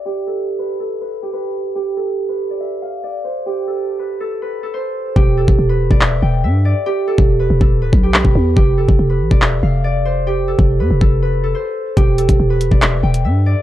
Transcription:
<<
  \new Staff \with { instrumentName = "Harp" } { \time 4/4 \key e \phrygian \tempo 4 = 141 g'8 a'8. b'8 a'8 b'8 g'16 b'4 | g'8 a'8. b'8 d''16 e''8 f''8 d''8 c''8 | g'8 a'8. b'8 a'8 b'8 a'16 c''4 | g'8 a'8. b'8 d''16 e''8 g''8 e''8 d''8 |
g'8 a'8. b'8 a'8 b'8 g'16 b'4 | g'8 a'8. b'8 d''16 e''8 f''8 d''8 c''8 | g'8 a'8. b'8 a'8 b'8 a'16 c''4 | g'8 a'8. b'8 d''16 e''8 g''8 e''8 d''8 | }
  \new Staff \with { instrumentName = "808-style bass" } { \clef bass \time 4/4 \key e \phrygian r1 | r1 | r1 | e,,8. e,,16 e,,8. e,,8. e,,8 g,8. r16 |
r8. e,,8. e,,16 e,,8 d,,16 b,,8. e,,16 e,8 | f,,8. f,,16 f,,8 a,,16 e,,8. f,,4.~ | f,,8. f,,8 f,16 f,,16 f,,4~ f,,16 r4 | e,,8. e,,16 e,,8. e,,8. e,,8 g,8. r16 | }
  \new DrumStaff \with { instrumentName = "Drums" } \drummode { \time 4/4 r4 r4 r4 r4 | r4 r4 r4 r4 | r4 r4 r4 r4 | bd8. bd16 r8. bd16 hc4 r4 |
r8. bd16 r8. bd16 r8 bd8 hc16 bd8. | bd8. bd16 r8. bd16 hc4 r4 | r8. bd16 r8. bd16 r4 r4 | <hh bd>8 hh16 <hh bd>16 r8 hh16 bd16 <hc hh>8. hh16 r4 | }
>>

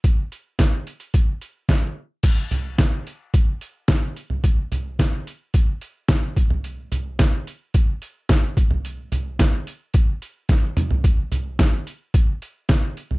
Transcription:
\new DrumStaff \with { instrumentName = "Drums" } \drummode { \time 4/4 \tempo 4 = 109 <hh bd>8 hh8 <hh bd sn>8 hh16 hh16 <hh bd>8 hh8 <bd sn>4 | <cymc hh bd>8 <hh tomfh>8 <hh bd sn>8 hh8 <hh bd>8 hh8 <hh bd sn>8 hh16 tomfh16 | <hh bd>8 <hh tomfh>8 <hh bd sn>8 hh8 <hh bd>8 hh8 <hh bd sn>8 <hh bd>16 tomfh16 | hh8 <hh tomfh>8 <hh bd sn>8 hh8 <hh bd>8 hh8 <hh bd sn>8 <hh bd>16 tomfh16 |
hh8 <hh tomfh>8 <hh bd sn>8 hh8 <hh bd>8 hh8 <hh bd sn>8 <hh toml>16 tomfh16 | <hh bd>8 <hh tomfh>8 <hh bd sn>8 hh8 <hh bd>8 hh8 <hh bd sn>8 hh16 tomfh16 | }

